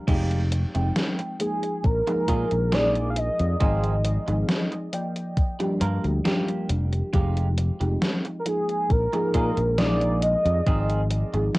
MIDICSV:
0, 0, Header, 1, 7, 480
1, 0, Start_track
1, 0, Tempo, 882353
1, 44, Time_signature, 4, 2, 24, 8
1, 6302, End_track
2, 0, Start_track
2, 0, Title_t, "Soft synth lead"
2, 0, Program_c, 0, 80
2, 763, Note_on_c, 0, 68, 86
2, 1006, Note_on_c, 0, 70, 102
2, 1014, Note_off_c, 0, 68, 0
2, 1489, Note_on_c, 0, 74, 105
2, 1497, Note_off_c, 0, 70, 0
2, 1685, Note_off_c, 0, 74, 0
2, 1688, Note_on_c, 0, 77, 79
2, 1729, Note_on_c, 0, 75, 108
2, 1737, Note_off_c, 0, 77, 0
2, 2206, Note_off_c, 0, 75, 0
2, 4566, Note_on_c, 0, 70, 60
2, 4608, Note_on_c, 0, 68, 86
2, 4616, Note_off_c, 0, 70, 0
2, 4847, Note_on_c, 0, 70, 103
2, 4856, Note_off_c, 0, 68, 0
2, 5319, Note_off_c, 0, 70, 0
2, 5322, Note_on_c, 0, 74, 107
2, 5562, Note_on_c, 0, 75, 108
2, 5570, Note_off_c, 0, 74, 0
2, 6043, Note_off_c, 0, 75, 0
2, 6302, End_track
3, 0, Start_track
3, 0, Title_t, "Clean electric guitar"
3, 0, Program_c, 1, 27
3, 41, Note_on_c, 1, 56, 119
3, 44, Note_on_c, 1, 63, 102
3, 45, Note_on_c, 1, 67, 127
3, 46, Note_on_c, 1, 65, 104
3, 226, Note_off_c, 1, 56, 0
3, 226, Note_off_c, 1, 63, 0
3, 226, Note_off_c, 1, 65, 0
3, 227, Note_off_c, 1, 67, 0
3, 1243, Note_on_c, 1, 65, 92
3, 1246, Note_on_c, 1, 63, 77
3, 1246, Note_on_c, 1, 68, 105
3, 1247, Note_on_c, 1, 58, 78
3, 1369, Note_off_c, 1, 58, 0
3, 1370, Note_off_c, 1, 63, 0
3, 1370, Note_off_c, 1, 65, 0
3, 1370, Note_off_c, 1, 68, 0
3, 1481, Note_on_c, 1, 58, 90
3, 1485, Note_on_c, 1, 63, 87
3, 1485, Note_on_c, 1, 68, 102
3, 1486, Note_on_c, 1, 65, 72
3, 1723, Note_off_c, 1, 58, 0
3, 1723, Note_off_c, 1, 63, 0
3, 1723, Note_off_c, 1, 65, 0
3, 1724, Note_off_c, 1, 68, 0
3, 1961, Note_on_c, 1, 60, 120
3, 1964, Note_on_c, 1, 63, 98
3, 1965, Note_on_c, 1, 68, 127
3, 1966, Note_on_c, 1, 65, 97
3, 2145, Note_off_c, 1, 60, 0
3, 2146, Note_off_c, 1, 63, 0
3, 2146, Note_off_c, 1, 65, 0
3, 2147, Note_off_c, 1, 68, 0
3, 3161, Note_on_c, 1, 65, 82
3, 3163, Note_on_c, 1, 58, 86
3, 3163, Note_on_c, 1, 62, 79
3, 3163, Note_on_c, 1, 70, 105
3, 3287, Note_off_c, 1, 58, 0
3, 3288, Note_off_c, 1, 62, 0
3, 3288, Note_off_c, 1, 65, 0
3, 3289, Note_off_c, 1, 70, 0
3, 3399, Note_on_c, 1, 58, 96
3, 3401, Note_on_c, 1, 62, 75
3, 3404, Note_on_c, 1, 65, 76
3, 3407, Note_on_c, 1, 67, 85
3, 3642, Note_off_c, 1, 58, 0
3, 3642, Note_off_c, 1, 62, 0
3, 3642, Note_off_c, 1, 65, 0
3, 3643, Note_off_c, 1, 67, 0
3, 3879, Note_on_c, 1, 56, 121
3, 3882, Note_on_c, 1, 63, 104
3, 3884, Note_on_c, 1, 65, 106
3, 3887, Note_on_c, 1, 67, 121
3, 4065, Note_off_c, 1, 56, 0
3, 4065, Note_off_c, 1, 63, 0
3, 4065, Note_off_c, 1, 65, 0
3, 4066, Note_off_c, 1, 67, 0
3, 5083, Note_on_c, 1, 68, 112
3, 5085, Note_on_c, 1, 65, 78
3, 5086, Note_on_c, 1, 63, 76
3, 5087, Note_on_c, 1, 58, 86
3, 5209, Note_off_c, 1, 58, 0
3, 5209, Note_off_c, 1, 63, 0
3, 5210, Note_off_c, 1, 65, 0
3, 5210, Note_off_c, 1, 68, 0
3, 5321, Note_on_c, 1, 58, 90
3, 5324, Note_on_c, 1, 63, 83
3, 5325, Note_on_c, 1, 68, 104
3, 5328, Note_on_c, 1, 65, 83
3, 5563, Note_off_c, 1, 58, 0
3, 5563, Note_off_c, 1, 63, 0
3, 5564, Note_off_c, 1, 65, 0
3, 5564, Note_off_c, 1, 68, 0
3, 5802, Note_on_c, 1, 60, 117
3, 5805, Note_on_c, 1, 63, 104
3, 5805, Note_on_c, 1, 68, 127
3, 5808, Note_on_c, 1, 65, 101
3, 5986, Note_off_c, 1, 60, 0
3, 5986, Note_off_c, 1, 63, 0
3, 5987, Note_off_c, 1, 65, 0
3, 5987, Note_off_c, 1, 68, 0
3, 6302, End_track
4, 0, Start_track
4, 0, Title_t, "FM electric piano"
4, 0, Program_c, 2, 5
4, 39, Note_on_c, 2, 53, 80
4, 41, Note_on_c, 2, 56, 75
4, 43, Note_on_c, 2, 60, 74
4, 45, Note_on_c, 2, 63, 77
4, 47, Note_on_c, 2, 67, 91
4, 377, Note_off_c, 2, 53, 0
4, 378, Note_off_c, 2, 56, 0
4, 379, Note_off_c, 2, 60, 0
4, 379, Note_off_c, 2, 63, 0
4, 380, Note_off_c, 2, 67, 0
4, 405, Note_on_c, 2, 53, 78
4, 407, Note_on_c, 2, 56, 69
4, 408, Note_on_c, 2, 60, 70
4, 412, Note_on_c, 2, 63, 71
4, 413, Note_on_c, 2, 79, 84
4, 734, Note_off_c, 2, 53, 0
4, 735, Note_off_c, 2, 56, 0
4, 736, Note_off_c, 2, 60, 0
4, 737, Note_off_c, 2, 63, 0
4, 738, Note_off_c, 2, 79, 0
4, 759, Note_on_c, 2, 53, 78
4, 761, Note_on_c, 2, 56, 69
4, 763, Note_on_c, 2, 58, 68
4, 765, Note_on_c, 2, 63, 70
4, 1097, Note_off_c, 2, 53, 0
4, 1098, Note_off_c, 2, 56, 0
4, 1098, Note_off_c, 2, 58, 0
4, 1100, Note_off_c, 2, 63, 0
4, 1125, Note_on_c, 2, 53, 98
4, 1127, Note_on_c, 2, 56, 88
4, 1129, Note_on_c, 2, 58, 88
4, 1131, Note_on_c, 2, 63, 88
4, 1133, Note_on_c, 2, 68, 110
4, 1454, Note_off_c, 2, 53, 0
4, 1455, Note_off_c, 2, 56, 0
4, 1456, Note_off_c, 2, 58, 0
4, 1457, Note_off_c, 2, 63, 0
4, 1458, Note_off_c, 2, 68, 0
4, 1479, Note_on_c, 2, 53, 93
4, 1481, Note_on_c, 2, 56, 83
4, 1483, Note_on_c, 2, 58, 84
4, 1484, Note_on_c, 2, 63, 84
4, 1487, Note_on_c, 2, 68, 102
4, 1934, Note_off_c, 2, 53, 0
4, 1935, Note_off_c, 2, 56, 0
4, 1936, Note_off_c, 2, 58, 0
4, 1936, Note_off_c, 2, 63, 0
4, 1938, Note_off_c, 2, 68, 0
4, 1957, Note_on_c, 2, 53, 81
4, 1960, Note_on_c, 2, 56, 77
4, 1961, Note_on_c, 2, 60, 75
4, 1965, Note_on_c, 2, 63, 74
4, 1965, Note_on_c, 2, 68, 92
4, 2296, Note_off_c, 2, 53, 0
4, 2297, Note_off_c, 2, 56, 0
4, 2298, Note_off_c, 2, 60, 0
4, 2299, Note_off_c, 2, 63, 0
4, 2300, Note_off_c, 2, 68, 0
4, 2323, Note_on_c, 2, 53, 78
4, 2326, Note_on_c, 2, 56, 68
4, 2328, Note_on_c, 2, 60, 70
4, 2330, Note_on_c, 2, 63, 70
4, 2332, Note_on_c, 2, 68, 84
4, 2653, Note_off_c, 2, 53, 0
4, 2654, Note_off_c, 2, 56, 0
4, 2655, Note_off_c, 2, 60, 0
4, 2657, Note_off_c, 2, 63, 0
4, 2658, Note_off_c, 2, 68, 0
4, 2679, Note_on_c, 2, 53, 79
4, 2682, Note_on_c, 2, 58, 69
4, 2685, Note_on_c, 2, 74, 70
4, 2687, Note_on_c, 2, 79, 87
4, 3017, Note_off_c, 2, 53, 0
4, 3018, Note_off_c, 2, 58, 0
4, 3020, Note_off_c, 2, 74, 0
4, 3021, Note_off_c, 2, 79, 0
4, 3044, Note_on_c, 2, 53, 98
4, 3045, Note_on_c, 2, 55, 91
4, 3048, Note_on_c, 2, 58, 92
4, 3050, Note_on_c, 2, 62, 91
4, 3052, Note_on_c, 2, 67, 107
4, 3373, Note_off_c, 2, 53, 0
4, 3374, Note_off_c, 2, 55, 0
4, 3375, Note_off_c, 2, 58, 0
4, 3376, Note_off_c, 2, 62, 0
4, 3378, Note_off_c, 2, 67, 0
4, 3397, Note_on_c, 2, 53, 93
4, 3399, Note_on_c, 2, 55, 84
4, 3402, Note_on_c, 2, 58, 86
4, 3403, Note_on_c, 2, 62, 87
4, 3406, Note_on_c, 2, 67, 100
4, 3853, Note_off_c, 2, 53, 0
4, 3854, Note_off_c, 2, 55, 0
4, 3855, Note_off_c, 2, 58, 0
4, 3856, Note_off_c, 2, 62, 0
4, 3857, Note_off_c, 2, 67, 0
4, 3879, Note_on_c, 2, 53, 83
4, 3881, Note_on_c, 2, 56, 74
4, 3883, Note_on_c, 2, 60, 77
4, 3885, Note_on_c, 2, 63, 77
4, 3887, Note_on_c, 2, 67, 91
4, 4217, Note_off_c, 2, 53, 0
4, 4217, Note_off_c, 2, 56, 0
4, 4218, Note_off_c, 2, 60, 0
4, 4220, Note_off_c, 2, 63, 0
4, 4221, Note_off_c, 2, 67, 0
4, 4245, Note_on_c, 2, 53, 79
4, 4246, Note_on_c, 2, 56, 72
4, 4249, Note_on_c, 2, 60, 70
4, 4250, Note_on_c, 2, 63, 71
4, 4253, Note_on_c, 2, 67, 85
4, 4574, Note_off_c, 2, 53, 0
4, 4574, Note_off_c, 2, 56, 0
4, 4576, Note_off_c, 2, 60, 0
4, 4577, Note_off_c, 2, 63, 0
4, 4578, Note_off_c, 2, 67, 0
4, 4598, Note_on_c, 2, 53, 78
4, 4600, Note_on_c, 2, 56, 70
4, 4602, Note_on_c, 2, 58, 72
4, 4604, Note_on_c, 2, 63, 69
4, 4936, Note_off_c, 2, 53, 0
4, 4937, Note_off_c, 2, 56, 0
4, 4938, Note_off_c, 2, 58, 0
4, 4939, Note_off_c, 2, 63, 0
4, 4965, Note_on_c, 2, 53, 98
4, 4967, Note_on_c, 2, 56, 93
4, 4968, Note_on_c, 2, 58, 94
4, 4971, Note_on_c, 2, 63, 92
4, 4973, Note_on_c, 2, 68, 107
4, 5294, Note_off_c, 2, 53, 0
4, 5295, Note_off_c, 2, 56, 0
4, 5296, Note_off_c, 2, 58, 0
4, 5297, Note_off_c, 2, 63, 0
4, 5298, Note_off_c, 2, 68, 0
4, 5319, Note_on_c, 2, 53, 90
4, 5322, Note_on_c, 2, 56, 83
4, 5324, Note_on_c, 2, 58, 84
4, 5326, Note_on_c, 2, 63, 85
4, 5328, Note_on_c, 2, 68, 102
4, 5774, Note_off_c, 2, 53, 0
4, 5775, Note_off_c, 2, 56, 0
4, 5776, Note_off_c, 2, 58, 0
4, 5777, Note_off_c, 2, 63, 0
4, 5778, Note_off_c, 2, 68, 0
4, 5799, Note_on_c, 2, 53, 82
4, 5802, Note_on_c, 2, 56, 77
4, 5804, Note_on_c, 2, 60, 76
4, 5806, Note_on_c, 2, 63, 77
4, 5807, Note_on_c, 2, 68, 91
4, 6137, Note_off_c, 2, 53, 0
4, 6138, Note_off_c, 2, 56, 0
4, 6139, Note_off_c, 2, 60, 0
4, 6140, Note_off_c, 2, 63, 0
4, 6141, Note_off_c, 2, 68, 0
4, 6165, Note_on_c, 2, 53, 76
4, 6166, Note_on_c, 2, 56, 70
4, 6168, Note_on_c, 2, 60, 70
4, 6171, Note_on_c, 2, 63, 70
4, 6172, Note_on_c, 2, 68, 89
4, 6302, Note_off_c, 2, 53, 0
4, 6302, Note_off_c, 2, 56, 0
4, 6302, Note_off_c, 2, 60, 0
4, 6302, Note_off_c, 2, 63, 0
4, 6302, Note_off_c, 2, 68, 0
4, 6302, End_track
5, 0, Start_track
5, 0, Title_t, "Fingered electric bass"
5, 0, Program_c, 3, 33
5, 42, Note_on_c, 3, 29, 97
5, 346, Note_off_c, 3, 29, 0
5, 410, Note_on_c, 3, 29, 87
5, 488, Note_off_c, 3, 29, 0
5, 1003, Note_on_c, 3, 34, 83
5, 1090, Note_off_c, 3, 34, 0
5, 1242, Note_on_c, 3, 46, 101
5, 1329, Note_off_c, 3, 46, 0
5, 1370, Note_on_c, 3, 34, 81
5, 1787, Note_off_c, 3, 34, 0
5, 1849, Note_on_c, 3, 41, 98
5, 1928, Note_off_c, 3, 41, 0
5, 1962, Note_on_c, 3, 32, 97
5, 2266, Note_off_c, 3, 32, 0
5, 2329, Note_on_c, 3, 32, 84
5, 2408, Note_off_c, 3, 32, 0
5, 3162, Note_on_c, 3, 43, 97
5, 3249, Note_off_c, 3, 43, 0
5, 3289, Note_on_c, 3, 38, 92
5, 3368, Note_off_c, 3, 38, 0
5, 3644, Note_on_c, 3, 29, 94
5, 3813, Note_off_c, 3, 29, 0
5, 3881, Note_on_c, 3, 29, 98
5, 4186, Note_off_c, 3, 29, 0
5, 4248, Note_on_c, 3, 29, 91
5, 4328, Note_off_c, 3, 29, 0
5, 4842, Note_on_c, 3, 34, 88
5, 4929, Note_off_c, 3, 34, 0
5, 5081, Note_on_c, 3, 46, 101
5, 5169, Note_off_c, 3, 46, 0
5, 5208, Note_on_c, 3, 34, 86
5, 5626, Note_off_c, 3, 34, 0
5, 5687, Note_on_c, 3, 41, 94
5, 5767, Note_off_c, 3, 41, 0
5, 5802, Note_on_c, 3, 32, 96
5, 6106, Note_off_c, 3, 32, 0
5, 6167, Note_on_c, 3, 32, 87
5, 6247, Note_off_c, 3, 32, 0
5, 6302, End_track
6, 0, Start_track
6, 0, Title_t, "Muted clean electric guitar strokes"
6, 407, Note_on_c, 9, 29, 97
6, 461, Note_off_c, 9, 29, 0
6, 523, Note_on_c, 9, 29, 35
6, 577, Note_off_c, 9, 29, 0
6, 647, Note_on_c, 9, 29, 33
6, 702, Note_off_c, 9, 29, 0
6, 1128, Note_on_c, 9, 29, 119
6, 1182, Note_off_c, 9, 29, 0
6, 2327, Note_on_c, 9, 29, 93
6, 2381, Note_off_c, 9, 29, 0
6, 2441, Note_on_c, 9, 29, 33
6, 2496, Note_off_c, 9, 29, 0
6, 2567, Note_on_c, 9, 29, 37
6, 2621, Note_off_c, 9, 29, 0
6, 3046, Note_on_c, 9, 29, 123
6, 3101, Note_off_c, 9, 29, 0
6, 4246, Note_on_c, 9, 29, 92
6, 4301, Note_off_c, 9, 29, 0
6, 4363, Note_on_c, 9, 29, 36
6, 4417, Note_off_c, 9, 29, 0
6, 4488, Note_on_c, 9, 29, 34
6, 4542, Note_off_c, 9, 29, 0
6, 4968, Note_on_c, 9, 29, 118
6, 5022, Note_off_c, 9, 29, 0
6, 6168, Note_on_c, 9, 29, 94
6, 6222, Note_off_c, 9, 29, 0
6, 6283, Note_on_c, 9, 29, 34
6, 6302, Note_off_c, 9, 29, 0
6, 6302, End_track
7, 0, Start_track
7, 0, Title_t, "Drums"
7, 42, Note_on_c, 9, 36, 114
7, 43, Note_on_c, 9, 42, 71
7, 43, Note_on_c, 9, 49, 76
7, 97, Note_off_c, 9, 36, 0
7, 97, Note_off_c, 9, 42, 0
7, 97, Note_off_c, 9, 49, 0
7, 168, Note_on_c, 9, 42, 40
7, 223, Note_off_c, 9, 42, 0
7, 282, Note_on_c, 9, 42, 95
7, 337, Note_off_c, 9, 42, 0
7, 408, Note_on_c, 9, 42, 42
7, 462, Note_off_c, 9, 42, 0
7, 522, Note_on_c, 9, 38, 120
7, 522, Note_on_c, 9, 42, 69
7, 577, Note_off_c, 9, 38, 0
7, 577, Note_off_c, 9, 42, 0
7, 647, Note_on_c, 9, 42, 42
7, 702, Note_off_c, 9, 42, 0
7, 761, Note_on_c, 9, 42, 97
7, 816, Note_off_c, 9, 42, 0
7, 887, Note_on_c, 9, 42, 44
7, 941, Note_off_c, 9, 42, 0
7, 1001, Note_on_c, 9, 42, 72
7, 1003, Note_on_c, 9, 36, 123
7, 1056, Note_off_c, 9, 42, 0
7, 1057, Note_off_c, 9, 36, 0
7, 1128, Note_on_c, 9, 42, 40
7, 1182, Note_off_c, 9, 42, 0
7, 1241, Note_on_c, 9, 42, 98
7, 1242, Note_on_c, 9, 36, 62
7, 1295, Note_off_c, 9, 42, 0
7, 1297, Note_off_c, 9, 36, 0
7, 1366, Note_on_c, 9, 42, 41
7, 1421, Note_off_c, 9, 42, 0
7, 1481, Note_on_c, 9, 38, 120
7, 1481, Note_on_c, 9, 42, 69
7, 1535, Note_off_c, 9, 38, 0
7, 1535, Note_off_c, 9, 42, 0
7, 1607, Note_on_c, 9, 42, 43
7, 1662, Note_off_c, 9, 42, 0
7, 1721, Note_on_c, 9, 42, 98
7, 1775, Note_off_c, 9, 42, 0
7, 1847, Note_on_c, 9, 42, 42
7, 1902, Note_off_c, 9, 42, 0
7, 1962, Note_on_c, 9, 36, 123
7, 1962, Note_on_c, 9, 42, 70
7, 2016, Note_off_c, 9, 42, 0
7, 2017, Note_off_c, 9, 36, 0
7, 2087, Note_on_c, 9, 42, 41
7, 2142, Note_off_c, 9, 42, 0
7, 2201, Note_on_c, 9, 42, 96
7, 2256, Note_off_c, 9, 42, 0
7, 2327, Note_on_c, 9, 42, 42
7, 2381, Note_off_c, 9, 42, 0
7, 2441, Note_on_c, 9, 38, 123
7, 2441, Note_on_c, 9, 42, 72
7, 2495, Note_off_c, 9, 38, 0
7, 2495, Note_off_c, 9, 42, 0
7, 2567, Note_on_c, 9, 42, 42
7, 2621, Note_off_c, 9, 42, 0
7, 2682, Note_on_c, 9, 42, 100
7, 2736, Note_off_c, 9, 42, 0
7, 2807, Note_on_c, 9, 42, 43
7, 2862, Note_off_c, 9, 42, 0
7, 2922, Note_on_c, 9, 36, 125
7, 2922, Note_on_c, 9, 42, 69
7, 2976, Note_off_c, 9, 42, 0
7, 2977, Note_off_c, 9, 36, 0
7, 3047, Note_on_c, 9, 42, 43
7, 3101, Note_off_c, 9, 42, 0
7, 3161, Note_on_c, 9, 42, 100
7, 3215, Note_off_c, 9, 42, 0
7, 3288, Note_on_c, 9, 42, 41
7, 3342, Note_off_c, 9, 42, 0
7, 3402, Note_on_c, 9, 38, 125
7, 3402, Note_on_c, 9, 42, 71
7, 3456, Note_off_c, 9, 38, 0
7, 3456, Note_off_c, 9, 42, 0
7, 3528, Note_on_c, 9, 42, 43
7, 3582, Note_off_c, 9, 42, 0
7, 3642, Note_on_c, 9, 42, 99
7, 3696, Note_off_c, 9, 42, 0
7, 3768, Note_on_c, 9, 42, 43
7, 3822, Note_off_c, 9, 42, 0
7, 3882, Note_on_c, 9, 36, 123
7, 3883, Note_on_c, 9, 42, 68
7, 3936, Note_off_c, 9, 36, 0
7, 3937, Note_off_c, 9, 42, 0
7, 4009, Note_on_c, 9, 42, 41
7, 4063, Note_off_c, 9, 42, 0
7, 4122, Note_on_c, 9, 42, 94
7, 4176, Note_off_c, 9, 42, 0
7, 4247, Note_on_c, 9, 42, 41
7, 4302, Note_off_c, 9, 42, 0
7, 4362, Note_on_c, 9, 38, 122
7, 4362, Note_on_c, 9, 42, 69
7, 4416, Note_off_c, 9, 38, 0
7, 4416, Note_off_c, 9, 42, 0
7, 4487, Note_on_c, 9, 42, 42
7, 4542, Note_off_c, 9, 42, 0
7, 4601, Note_on_c, 9, 42, 100
7, 4656, Note_off_c, 9, 42, 0
7, 4727, Note_on_c, 9, 42, 42
7, 4782, Note_off_c, 9, 42, 0
7, 4842, Note_on_c, 9, 36, 127
7, 4842, Note_on_c, 9, 42, 68
7, 4896, Note_off_c, 9, 36, 0
7, 4896, Note_off_c, 9, 42, 0
7, 4968, Note_on_c, 9, 42, 41
7, 5022, Note_off_c, 9, 42, 0
7, 5081, Note_on_c, 9, 42, 95
7, 5082, Note_on_c, 9, 36, 64
7, 5136, Note_off_c, 9, 36, 0
7, 5136, Note_off_c, 9, 42, 0
7, 5207, Note_on_c, 9, 42, 39
7, 5262, Note_off_c, 9, 42, 0
7, 5321, Note_on_c, 9, 38, 123
7, 5321, Note_on_c, 9, 42, 67
7, 5375, Note_off_c, 9, 38, 0
7, 5375, Note_off_c, 9, 42, 0
7, 5446, Note_on_c, 9, 42, 44
7, 5501, Note_off_c, 9, 42, 0
7, 5560, Note_on_c, 9, 42, 96
7, 5615, Note_off_c, 9, 42, 0
7, 5688, Note_on_c, 9, 42, 42
7, 5742, Note_off_c, 9, 42, 0
7, 5802, Note_on_c, 9, 36, 120
7, 5802, Note_on_c, 9, 42, 68
7, 5856, Note_off_c, 9, 36, 0
7, 5856, Note_off_c, 9, 42, 0
7, 5927, Note_on_c, 9, 42, 39
7, 5981, Note_off_c, 9, 42, 0
7, 6041, Note_on_c, 9, 42, 90
7, 6095, Note_off_c, 9, 42, 0
7, 6167, Note_on_c, 9, 42, 39
7, 6221, Note_off_c, 9, 42, 0
7, 6282, Note_on_c, 9, 38, 122
7, 6282, Note_on_c, 9, 42, 65
7, 6302, Note_off_c, 9, 38, 0
7, 6302, Note_off_c, 9, 42, 0
7, 6302, End_track
0, 0, End_of_file